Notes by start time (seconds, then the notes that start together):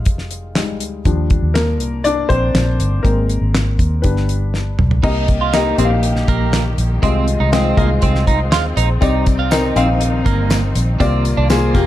Already playing: G3 G#3 D#4 F4 F5
0.05 F1, kick, closed hi-hat
0.18 snare
0.31 closed hi-hat
0.55 G3 G#3 D#4, snare, clap, closed hi-hat
0.80 D2, closed hi-hat
1.05 D#2 F3 G3 D4, kick, closed hi-hat
1.30 kick, closed hi-hat
1.42 D#2
1.54 A#3 A#4, snare, clap, closed hi-hat
1.80 C2, closed hi-hat
2.04 D4 D5, closed hi-hat
2.29 A#1 C4 C5, kick, closed hi-hat
2.54 A#1, snare, clap, closed hi-hat
2.79 G1, closed hi-hat
3.03 G#1 G#3 A#3 C4 A#4, kick, closed hi-hat
3.29 closed hi-hat
3.41 G#1
3.54 snare, clap, closed hi-hat
3.79 D#2, kick, closed hi-hat
4.02 G1 G3 B3 D4 B4, kick, closed hi-hat
4.16 snare
4.29 closed hi-hat
4.54 snare
4.79 B1, mid tom
4.91 floor tom
5.03 C3 D#3 G3 A#3 D#4 G4 D#5, kick, crash
5.28 kick, closed hi-hat
5.41 F4
5.53 A#3 D#4 G4 D#5, snare, clap, closed hi-hat
5.78 A#1 A#3 C4 G4 D#5, closed hi-hat
5.85 F5
6.03 closed hi-hat
6.16 snare
6.28 A#1 A#3, kick, closed hi-hat
6.53 snare, clap, closed hi-hat
6.78 A#1, closed hi-hat
7.02 C2 C3 G#3 C4 F4 D#5, kick, closed hi-hat
7.28 closed hi-hat
7.40 C2 D#4
7.52 G#3 C4 F4 D#5, snare, clap, closed hi-hat
7.77 C2 G#3 A#3 F4 D#5, kick, closed hi-hat
8.02 C2 C4, kick, closed hi-hat
8.15 snare
8.27 D#4, kick, closed hi-hat
8.52 D#2 F4, snare, clap, closed hi-hat
8.77 A#1 D#4, closed hi-hat
9.01 C2 C3 D#3 G3 C4 D#4 D5, kick, closed hi-hat, tambourine
9.26 kick, closed hi-hat, tambourine
9.39 F4
9.51 C4 D#4 A#4, snare, clap, closed hi-hat, tambourine
9.76 A#1 C4 D#4 F5, closed hi-hat, tambourine
10.01 closed hi-hat
10.26 G1 A#3, kick, closed hi-hat, tambourine
10.50 snare, clap, closed hi-hat, tambourine
10.75 A#1, closed hi-hat, tambourine
11.00 C2 C3 F3 A#3 C4 F4 D5, kick, closed hi-hat, tambourine
11.25 closed hi-hat, tambourine
11.37 C2 D4
11.50 A#3 C4 F4 G#4, snare, clap, closed hi-hat, tambourine
11.74 F1 A#3 F4 G4, kick, closed hi-hat, tambourine